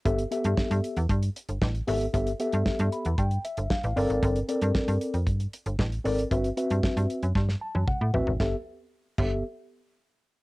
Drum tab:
CC |----------------|----------------|----------------|----------------|
HH |xxxx-xxxxxxx-xox|xxxx-xxxxxxx-xox|xxxx-xxxxxxx-xox|xxxx-xxx--------|
SD |----o-------o---|----o-------o---|----o-------o---|----o---oo------|
T1 |----------------|----------------|----------------|-----------o----|
T2 |----------------|----------------|----------------|------------o---|
FT |----------------|----------------|----------------|--------------oo|
BD |o---o---o---o---|o---o---o---o---|o---o---o---o---|o---o---o---o---|

CC |------x---------|
HH |----------------|
SD |o---------------|
T1 |----------------|
T2 |----------------|
FT |----------------|
BD |o-----o---------|